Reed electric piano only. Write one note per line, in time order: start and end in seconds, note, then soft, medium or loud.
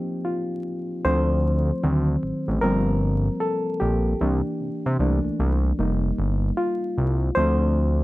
0.00 1.00 F3 medium
0.00 1.04 A#3 medium
0.00 1.01 C4 medium
0.00 1.02 D#4 medium
0.00 1.02 G4 medium
0.25 1.06 F4 medium
1.05 1.61 F3 medium
1.05 1.61 A3 soft
1.05 1.61 C4 medium
1.05 2.67 C5 loud
1.83 2.58 D#3 medium
1.83 2.58 F#3 soft
1.83 2.58 C4 medium
2.61 4.16 F3 medium
2.61 4.16 G3 soft
2.61 4.16 A#3 soft
2.61 4.16 C4 medium
2.61 3.43 A#4 medium
3.40 3.81 A4 medium
3.80 4.94 G4 medium
4.21 4.95 E3 medium
4.21 4.95 A#3 soft
4.21 4.96 D4 medium
5.00 5.74 E3 soft
5.00 5.74 A3 soft
5.00 5.74 A#3 soft
5.00 5.74 D4 medium
5.79 7.32 G3 medium
5.79 7.32 A#3 soft
5.79 7.33 D#4 medium
6.57 7.32 F4 medium
7.35 8.04 F3 soft
7.35 8.04 A3 soft
7.35 8.04 C4 medium
7.35 8.04 C5 loud